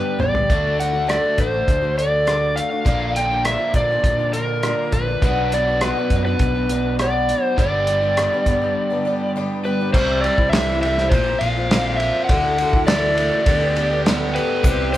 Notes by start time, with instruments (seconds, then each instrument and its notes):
Already playing: twelve-string acoustic guitar G2 D3 G3 B3 D4 G4, overdriven electric guitar G2 D3 G3 B3 D4 G4, electric slide guitar B4
0.19 fingered electric bass A1, twelve-string acoustic guitar G3 B3 D4 G4, electric slide guitar D5, mid tom
0.34 twelve-string acoustic guitar G3 B3 D4 G4, floor tom
0.49 fingered electric bass D2, twelve-string acoustic guitar D3 A3 D4 F#4, kick, closed hi-hat
0.78 twelve-string acoustic guitar D3 A3 D4 F#4, electric slide guitar F#5, closed hi-hat
0.93 twelve-string acoustic guitar A3 D4 F#4
1.07 twelve-string acoustic guitar D3 A3 D4 F#4, electric slide guitar D5, cross-stick, closed hi-hat
1.23 twelve-string acoustic guitar A3 D4 F#4
1.38 fingered electric bass A1, twelve-string acoustic guitar D3 A3 D4 F#4, electric slide guitar C5, kick, closed hi-hat
1.53 twelve-string acoustic guitar A3 D4 F#4
1.67 fingered electric bass D2, kick, closed hi-hat
1.82 twelve-string acoustic guitar A3 D4 F#4
1.97 twelve-string acoustic guitar D3 A3 D4 F#4, electric slide guitar D5, closed hi-hat
2.26 twelve-string acoustic guitar D3 A3 D4 F#4, cross-stick, closed hi-hat
2.56 twelve-string acoustic guitar D3 A3 D4 F#4, electric slide guitar F5, closed hi-hat
2.71 twelve-string acoustic guitar A3 D4 F#4
2.85 fingered electric bass A#1, twelve-string acoustic guitar A#2 D3 A#3 D4 F4, kick, closed hi-hat
3.16 twelve-string acoustic guitar D3 A#3 D4 F4, electric slide guitar G5, closed hi-hat
3.31 twelve-string acoustic guitar A#3 D4 F4
3.45 twelve-string acoustic guitar A#2 D3 A#3 D4 F4, electric slide guitar E5, cross-stick, closed hi-hat
3.60 twelve-string acoustic guitar A#3 D4 F4
3.73 fingered electric bass A#2, twelve-string acoustic guitar D3 A#3, electric slide guitar D5, kick, closed hi-hat
3.77 twelve-string acoustic guitar D4 F4
3.90 twelve-string acoustic guitar A#3 D4 F4
4.03 fingered electric bass A#2, kick, closed hi-hat
4.19 twelve-string acoustic guitar A#3 D4 F4
4.33 twelve-string acoustic guitar D3 A#3 D4 F4, electric slide guitar A#4, closed hi-hat
4.63 twelve-string acoustic guitar A#2 D3 A#3 D4 F4, cross-stick, closed hi-hat
4.92 fingered electric bass A#1, twelve-string acoustic guitar D3 A#3 D4 F4, electric slide guitar B4, kick, closed hi-hat
5.08 twelve-string acoustic guitar A#3 D4 F4
5.22 fingered electric bass B1, twelve-string acoustic guitar B2 F#3 B3 D4 F#4, kick, closed hi-hat
5.52 twelve-string acoustic guitar F#3 B3 D4 F#4, electric slide guitar D5, closed hi-hat
5.67 twelve-string acoustic guitar B3 D4 F#4
5.81 twelve-string acoustic guitar B2 F#3 B3 D4 F#4, electric slide guitar B4, cross-stick, closed hi-hat
5.97 twelve-string acoustic guitar B3 D4 F#4
6.10 fingered electric bass F#2, twelve-string acoustic guitar F#3 B3 D4 F#4, kick, closed hi-hat
6.25 twelve-string acoustic guitar B3 D4 F#4, electric slide guitar B4
6.39 fingered electric bass B1, kick, closed hi-hat
6.55 twelve-string acoustic guitar B3 D4 F#4
6.69 twelve-string acoustic guitar F#3 B3 D4 F#4, closed hi-hat
6.99 twelve-string acoustic guitar B2 F#3 B3 D4 F#4, electric slide guitar D5, cross-stick, closed hi-hat
7.29 twelve-string acoustic guitar F#3 B3 D4 F#4, closed hi-hat
7.44 electric slide guitar C5
7.58 fingered electric bass G1, twelve-string acoustic guitar G2 D3 G3 B3 D4 G4, electric slide guitar D5, kick, closed hi-hat
7.87 twelve-string acoustic guitar G3 B3 D4, closed hi-hat
7.91 twelve-string acoustic guitar G4
8.01 twelve-string acoustic guitar G3 B3 D4 G4
8.17 twelve-string acoustic guitar G2 D3 G3 B3 D4 G4, cross-stick, closed hi-hat
8.33 twelve-string acoustic guitar G3 B3 D4 G4
8.46 fingered electric bass G2, twelve-string acoustic guitar G3 B3 D4 G4, kick, closed hi-hat
8.62 twelve-string acoustic guitar G3 B3 D4 G4
8.90 twelve-string acoustic guitar G3 B3 D4 G4
9.05 twelve-string acoustic guitar G3 B3 D4 G4
9.36 twelve-string acoustic guitar G2 D3 G3 B3 D4 G4
9.64 twelve-string acoustic guitar G3 B3 D4 G4, electric slide guitar B4
9.80 twelve-string acoustic guitar G3 B3 D4 G4
9.93 fingered electric bass C2, twelve-string acoustic guitar C3 E3 G3 C4 E4, electric slide guitar C5, kick, crash
10.21 twelve-string acoustic guitar E3 G3, electric slide guitar D5, ride
10.25 twelve-string acoustic guitar C4 E4
10.37 fingered electric bass C2, twelve-string acoustic guitar G3 C4 E4, kick
10.49 electric slide guitar E5, snare, ride
10.54 twelve-string acoustic guitar C3 E3 G3 C4 E4
10.82 twelve-string acoustic guitar E3 G3 C4, electric slide guitar E5, ride
10.86 twelve-string acoustic guitar E4
10.98 twelve-string acoustic guitar G3 C4 E4, snare
11.09 fingered electric bass A#1, twelve-string acoustic guitar A#2 F3 A#3, electric slide guitar C5, kick, ride
11.13 twelve-string acoustic guitar C4 F4
11.27 twelve-string acoustic guitar A#3 C4 F4
11.39 fingered electric bass A#1, electric slide guitar F5, ride
11.43 twelve-string acoustic guitar F3 A#3 C4 F4
11.58 twelve-string acoustic guitar A#3 C4 F4
11.71 twelve-string acoustic guitar A#2 F3 A#3 C4 F4, snare, ride
11.97 electric slide guitar E5, ride
12.01 overdriven electric guitar F4
12.25 electric slide guitar F#5
12.29 fingered electric bass D2, twelve-string acoustic guitar D3 A3 E4 F#4, kick, ride
12.58 twelve-string acoustic guitar D3 A3 E4 F#4, ride
12.73 fingered electric bass D2, twelve-string acoustic guitar A3 E4 F#4, kick
12.87 twelve-string acoustic guitar D3 A3 E4 F#4, overdriven electric guitar E3, electric slide guitar D5, snare, ride
13.17 twelve-string acoustic guitar D3 A3 E4 F#4, ride
13.31 twelve-string acoustic guitar A3 E4 F#4
13.46 fingered electric bass D2, twelve-string acoustic guitar D3 A3 B3 G4, kick, ride
13.61 twelve-string acoustic guitar A3 B3 G4
13.75 twelve-string acoustic guitar D3 A3 B3 G4, ride
13.90 twelve-string acoustic guitar A3 B3 G4
14.06 twelve-string acoustic guitar D3 A3 B3 G4, snare, ride
14.35 overdriven electric guitar G4, electric slide guitar B4, ride
14.63 fingered electric bass C2, twelve-string acoustic guitar C3 E3 G3 C4 G4, tonewheel organ G4 C5 E5 C6, kick, ride, shaker
14.93 twelve-string acoustic guitar E3 G3, electric slide guitar C5, ride